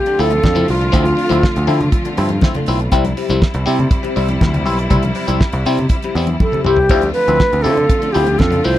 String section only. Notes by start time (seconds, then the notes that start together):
Already playing: D3 F3 A3 C4 F4
2.91 G3 E4
6.90 D3 F3 A3 C4 F4